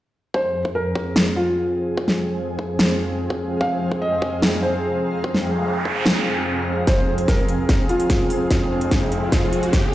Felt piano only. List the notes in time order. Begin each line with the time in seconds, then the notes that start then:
0.34 C5
0.75 A#4
1.36 F4
3.61 F5
4.02 D#5
4.63 C5
6.87 C5
7.28 A#4
7.89 F4